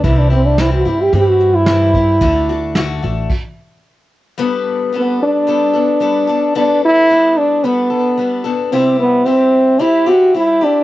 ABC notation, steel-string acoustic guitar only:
X:1
M:4/4
L:1/8
Q:1/4=111
K:G
V:1 name="Steel-string acoustic guitar"
[C,E,G,CE] [G,CE] [C,E,G,CE] [G,CE] [E,G,CE]2 [C,E,G,CE] [G,CE] | [D,A,DF] [A,DF] [D,A,DF] [A,DF] z4 | [G,B,DA]2 [G,B,DA]2 [G,B,DA] [B,DA] [G,B,DA] [B,DA] | [G,B,DA]2 [G,B,DA]2 [G,B,DA] [B,DA] [G,B,DA] [B,DA] |
[C,G,CEG]2 [G,CEG]2 [G,CEG] [CEG] [G,CEG] [CEG] |]